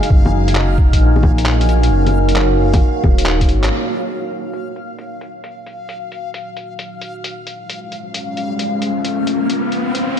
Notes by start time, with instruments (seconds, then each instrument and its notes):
Already playing: ambient pad G#3 D#4 F#4 C5 G#5, synth texture F5
0.03 closed hi-hat
0.10 detuned saw bass F#1, ambient pad A#3, kick
0.26 low bongo
0.48 closed hi-hat
0.56 clap
0.63 ambient pad C#5
0.78 detuned saw bass F#1, kick
0.93 kick, closed hi-hat
1.00 detuned saw bass A#1
1.16 low bongo
1.23 kick, low bongo
1.38 closed hi-hat
1.46 clap
1.61 closed hi-hat
1.69 closed hi-hat
1.83 closed hi-hat
1.91 detuned saw bass F#1
2.07 closed hi-hat, low bongo
2.29 closed hi-hat
2.36 clap
2.58 detuned saw bass F#1
2.74 kick, closed hi-hat, low bongo
3.04 detuned saw bass D#1, kick, low bongo
3.18 closed hi-hat
3.26 clap
3.41 kick, closed hi-hat
3.48 detuned saw bass G#1, closed hi-hat
3.64 clap, closed hi-hat
3.71 synth texture F5
3.86 closed hi-hat
4.09 closed hi-hat
4.31 closed hi-hat
4.53 closed hi-hat
4.76 closed hi-hat
4.99 closed hi-hat
5.21 closed hi-hat
5.44 closed hi-hat
5.66 closed hi-hat
5.89 closed hi-hat
6.12 closed hi-hat
6.34 closed hi-hat
6.57 closed hi-hat
6.79 closed hi-hat
7.01 closed hi-hat
7.24 closed hi-hat
7.32 ambient pad G#3, riser
7.47 ambient pad C#4, closed hi-hat
7.60 ambient pad F4
7.70 ambient pad F5, closed hi-hat
7.92 ambient pad C5, closed hi-hat
8.14 closed hi-hat
8.37 closed hi-hat
8.59 closed hi-hat
8.82 closed hi-hat
9.05 closed hi-hat
9.27 closed hi-hat
9.50 closed hi-hat
9.72 closed hi-hat
9.95 closed hi-hat